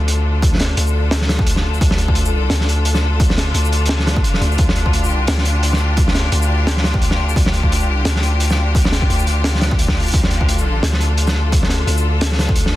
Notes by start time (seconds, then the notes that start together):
Already playing: D2 D3 D4 F4 A4
0.08 closed hi-hat
0.42 kick, closed hi-hat
0.53 snare
0.55 snare
0.58 snare, closed hi-hat
0.61 snare
0.77 D2, closed hi-hat
0.87 shaker
1.11 snare, closed hi-hat
1.21 snare
1.29 snare, closed hi-hat
1.39 kick
1.47 closed hi-hat
1.56 snare
1.74 shaker
1.81 D2, kick, closed hi-hat
1.91 snare
1.98 closed hi-hat
2.08 kick
2.15 closed hi-hat
2.25 C#2, shaker
2.50 D2, snare, closed hi-hat
2.61 snare
2.69 closed hi-hat
2.85 closed hi-hat
2.95 snare, shaker
3.20 kick, closed hi-hat
3.30 snare
3.38 snare, closed hi-hat
3.54 D2, closed hi-hat
3.65 shaker
3.72 closed hi-hat
3.85 snare, closed hi-hat
3.99 snare
4.07 snare, closed hi-hat
4.16 kick
4.24 closed hi-hat
4.34 snare
4.41 D2, closed hi-hat
4.51 shaker
4.58 D2, kick, closed hi-hat
4.69 snare
4.76 closed hi-hat
4.86 kick
4.93 closed hi-hat
5.04 G4, shaker
5.06 C#2, shaker
5.27 D2, snare, closed hi-hat
5.38 snare
5.45 closed hi-hat
5.63 closed hi-hat
5.72 snare, shaker
5.74 shaker
5.77 shaker
5.97 kick, closed hi-hat
6.08 snare
6.15 snare, closed hi-hat
6.32 D2, closed hi-hat
6.42 shaker
6.67 snare, closed hi-hat
6.77 snare
6.84 snare, closed hi-hat
6.94 kick
7.02 closed hi-hat
7.11 snare
7.29 shaker
7.36 D2, kick, closed hi-hat
7.46 snare
7.53 closed hi-hat
7.63 kick
7.72 closed hi-hat
7.80 shaker
7.84 C#2
8.05 D2, snare, closed hi-hat
8.16 snare
8.23 closed hi-hat
8.40 closed hi-hat
8.50 snare, shaker
8.75 kick, closed hi-hat
8.85 snare
8.92 snare, closed hi-hat
9.02 kick
9.10 D2, closed hi-hat
9.19 shaker
9.27 closed hi-hat
9.44 snare, closed hi-hat
9.55 snare
9.61 snare, closed hi-hat
9.71 kick
9.79 closed hi-hat
9.88 kick, snare
9.96 closed hi-hat
10.00 closed hi-hat
10.02 closed hi-hat
10.06 closed hi-hat, shaker
10.08 closed hi-hat
10.11 closed hi-hat
10.14 D2, kick, closed hi-hat, crash
10.23 snare
10.31 closed hi-hat
10.41 kick
10.49 closed hi-hat
10.58 A4, shaker
10.83 D2, snare, closed hi-hat
10.93 snare
11.01 closed hi-hat
11.18 closed hi-hat
11.27 snare, shaker
11.52 kick, closed hi-hat
11.63 snare
11.69 snare, closed hi-hat
11.87 D2, closed hi-hat
11.98 shaker
12.21 snare, closed hi-hat
12.32 snare
12.39 snare, closed hi-hat
12.49 kick
12.55 closed hi-hat
12.66 snare